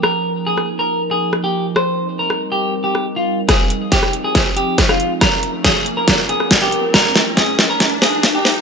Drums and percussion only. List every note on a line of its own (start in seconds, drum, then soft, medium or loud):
0.03 cross-stick medium
0.57 cross-stick medium
1.33 cross-stick medium
1.76 cross-stick medium
2.30 cross-stick medium
2.95 cross-stick soft
3.49 kick loud
3.49 cross-stick medium
3.49 snare soft
3.49 closed hi-hat medium
3.70 closed hi-hat medium
3.92 kick medium
3.92 snare soft
3.92 closed hi-hat medium
4.03 cross-stick medium
4.13 closed hi-hat medium
4.35 kick medium
4.35 snare soft
4.35 closed hi-hat medium
4.57 closed hi-hat medium
4.78 kick loud
4.78 cross-stick medium
4.78 snare medium
4.78 closed hi-hat medium
4.89 cross-stick medium
5.00 closed hi-hat medium
5.21 kick loud
5.21 cross-stick medium
5.21 snare medium
5.21 closed hi-hat medium
5.43 closed hi-hat medium
5.64 kick medium
5.64 snare medium
5.64 closed hi-hat medium
5.86 closed hi-hat medium
6.08 kick loud
6.08 snare medium
6.08 closed hi-hat medium
6.29 closed hi-hat medium
6.40 cross-stick medium
6.51 kick medium
6.51 snare medium
6.51 closed hi-hat medium
6.72 closed hi-hat medium
6.94 kick loud
6.94 snare medium
6.94 closed hi-hat medium
7.16 snare medium
7.16 closed hi-hat medium
7.37 kick loud
7.37 snare medium
7.37 closed hi-hat medium
7.59 snare medium
7.59 closed hi-hat medium
7.80 kick loud
7.80 snare medium
7.80 closed hi-hat medium
8.02 snare medium
8.02 closed hi-hat medium
8.23 kick loud
8.23 snare medium
8.23 closed hi-hat medium
8.45 snare medium
8.45 closed hi-hat medium